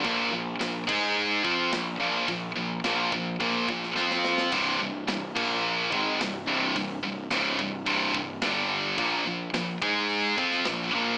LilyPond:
<<
  \new Staff \with { instrumentName = "Distorted electric guitar" } { \clef bass \time 4/4 \tempo 4 = 107 <bes, f bes>8 <bes, f>8 <bes, f>8 <aes ees' aes'>4 <f c' f'>8 <bes, f>8 <bes, f bes>8 | <bes, f>8 <bes, f>8 <bes, f bes>8 <bes, f>8 <bes, f bes>8 <bes, f>8 <f c' f'>4 | <c, g, c>8 <c, g,>8 <c, g,>8 <bes, f bes>4 <aes, ees aes>8 <c, g,>8 <c, g, c>8 | <c, g,>8 <c, g,>8 <des, aes, des>8 <c, g,>8 <c, g, c>8 <c, g,>8 <g, d g>4 |
<bes, f bes>8 <bes, f>8 <bes, f>8 <aes ees' aes'>4 <f c' f'>8 <bes, f>8 <bes, f bes>8 | }
  \new Staff \with { instrumentName = "Distorted electric guitar" } { \clef bass \time 4/4 <bes, f bes>8 <bes, f>8 <bes, f>8 <aes ees' aes'>4 <f c' f'>8 <bes, f>8 <bes, f bes>8 | <bes, f>8 <bes, f>8 <bes, f bes>8 <bes, f>8 <bes, f bes>8 <bes, f>8 <f c' f'>4 | <c, g, c>8 <c, g,>8 <c, g,>8 <bes, f bes>4 <aes, ees aes>8 <c, g,>8 <c, g, c>8 | <c, g,>8 <c, g,>8 <des, aes, des>8 <c, g,>8 <c, g, c>8 <c, g,>8 <g, d g>4 |
<bes, f bes>8 <bes, f>8 <bes, f>8 <aes ees' aes'>4 <f c' f'>8 <bes, f>8 <bes, f bes>8 | }
  \new Staff \with { instrumentName = "Picked electric bass" } { \clef bass \time 4/4 bes,,8 bes,,8 bes,,8 aes,4 f,8 bes,,8 bes,,8 | bes,,8 bes,,8 bes,,8 bes,,8 bes,,8 bes,,8 f,4 | c,,8 c,,8 c,,8 bes,,4 aes,,8 c,,8 c,,8 | c,,8 c,,8 des,,8 c,,8 c,,8 c,,8 g,,4 |
bes,,8 bes,,8 bes,,8 aes,4 f,8 bes,,8 bes,,8 | }
  \new DrumStaff \with { instrumentName = "Drums" } \drummode { \time 4/4 <hho bd>4 <hho sn>8 <cymc bd>8 r8 bd8 <hho sn>4 | <hho bd>4 <hho sn>8 bd8 <hho bd>8 bd16 sn16 sn16 sn16 sn16 sn16 | <cymc bd>4 <hho sn>8 <cymc bd>8 r8 bd8 <hho sn>4 | <hho bd>4 <hho sn>8 bd8 <hho bd>8 bd8 <hho sn>4 |
<hho bd>4 <hho sn>8 bd8 hho8 bd16 sn16 <hho sn>4 | }
>>